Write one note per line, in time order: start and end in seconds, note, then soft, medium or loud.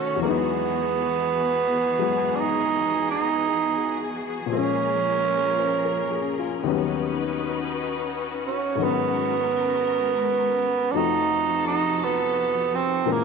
0.00 0.21 B2 soft
0.00 0.18 D#3 medium
0.00 0.20 F#3 soft
0.00 0.20 A3 medium
0.00 0.21 A3 soft
0.00 0.22 B3 soft
0.00 0.19 C#4 medium
0.00 0.23 C#4 soft
0.00 0.23 D#4 soft
0.00 4.46 F#4 medium
0.00 0.19 A4 medium
0.16 4.47 E2 soft
0.16 4.49 E3 soft
0.16 4.45 E3 medium
0.20 1.97 F#3 soft
0.20 0.31 A#3 soft
0.20 4.45 B3 medium
0.20 6.60 G#4 medium
0.25 1.98 G#3 soft
0.25 4.53 D#4 soft
0.29 2.37 B3 medium
1.99 4.49 F#3 soft
1.99 4.50 G#3 soft
1.99 4.50 B3 soft
1.99 4.51 F#4 soft
2.36 2.41 D4 medium
2.36 3.09 D#4 medium
3.11 4.12 D#4 medium
4.46 6.63 A#2 soft
4.46 6.64 F3 soft
4.46 6.62 A#4 medium
4.50 6.63 F3 medium
4.50 6.66 G#3 soft
4.50 6.63 A#3 medium
4.50 10.90 C#4 medium
4.50 6.62 C#4 medium
4.55 6.67 A#3 soft
4.55 6.66 C#4 soft
5.58 6.08 C5 soft
5.85 6.30 A#4 soft
6.11 6.44 G#4 soft
6.39 6.76 F4 soft
6.62 8.79 D#2 soft
6.62 8.76 D#3 soft
6.62 8.78 F#3 soft
6.62 8.76 D#4 medium
6.62 10.89 F#4 medium
6.62 8.76 B4 medium
6.66 8.80 G3 soft
6.66 8.81 B3 soft
6.66 8.81 C#4 soft
8.47 8.85 C#4 medium
8.75 10.92 G#2 soft
8.75 10.93 D#3 soft
8.75 10.91 G#3 medium
8.75 10.91 A#4 medium
8.80 10.94 F#3 soft
8.80 10.93 B3 medium
8.80 10.96 B3 soft
8.80 10.95 A#4 soft
8.86 10.97 C#4 soft
10.92 13.08 F2 soft
10.92 13.08 F3 soft
10.92 13.08 A3 soft
10.92 10.98 D4 medium
10.92 13.08 D#4 soft
10.96 13.07 C3 medium
10.96 13.07 F3 medium
10.96 13.06 D#4 medium
10.96 11.66 D#4 medium
10.96 13.06 F#4 medium
10.96 13.09 F#4 soft
10.96 13.06 A4 medium
11.67 12.06 D#4 medium
12.04 12.77 B3 medium
12.75 13.13 C4 medium
13.05 13.24 A#2 soft
13.05 13.24 E3 soft
13.05 13.24 E3 medium
13.05 13.24 G#3 soft
13.05 13.24 A#3 medium
13.05 13.24 C#4 medium
13.05 13.24 C#4 soft
13.05 13.24 G#4 medium
13.05 13.24 A#4 soft
13.05 13.24 A#4 medium
13.12 13.24 A#3 medium